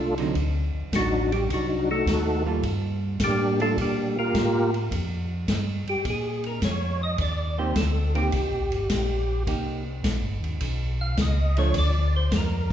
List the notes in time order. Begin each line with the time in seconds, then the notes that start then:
Already playing: C2 A3 D4 F4 A4
0.18 D3 F#3 C4 D#4, ride
0.35 D2, kick, ride
0.74 D2
0.92 A1 F#3 D4 D#4 F#4, kick, snare, hi-hat pedal, ride
1.32 G3 G4, ride
1.49 C2 D#4 F#4, kick, ride
1.54 F#3 D4
1.91 A3 D#4 F#4 A4
2.06 D#2, kick, snare, hi-hat pedal, ride
2.46 G3 A#3 F4 A4
2.63 G2, kick, ride
3.20 A2, kick, snare, hi-hat pedal, ride
3.24 G3 A#3 D4 G4
3.60 G3 A3 A#3 D4 F4 A4, ride
3.77 A#2, kick, ride
3.81 G3 A#3 D4 G4
4.19 A#3 F4 G4 A#4
4.34 A2, kick, snare, hi-hat pedal, ride
4.74 ride
4.91 F2, kick, ride
5.48 G2, kick, snare, hi-hat pedal, ride
5.87 G2 G4, ride
6.05 A#2, kick, ride
6.10 G#4
6.44 A#4, ride
6.62 F2 C#5, kick, snare, hi-hat pedal, ride
7.03 D#5
7.18 D#2 D5, kick, ride
7.58 D#3 A#3 C4 G4 C5
7.76 D2 A4, kick, snare, hi-hat pedal, ride
8.15 D#3 A#3 C4 G4, ride
8.32 C2, kick, ride
8.51 A#1
8.70 G1, ride
8.90 A#1, kick, snare, hi-hat pedal, ride
9.47 C2 A#3 D#4 G4, kick, ride
10.04 A#1, kick, snare, hi-hat pedal, ride
10.22 G1
10.40 D#2, ride
10.60 B1, kick, ride
11.01 F5
11.17 C#2, kick, snare, hi-hat pedal, ride
11.21 D#5
11.57 F3 A3 D4 C#5, ride
11.74 D2, kick, ride
11.78 D5
12.16 C5
12.31 F2, kick, snare, hi-hat pedal, ride
12.36 A#4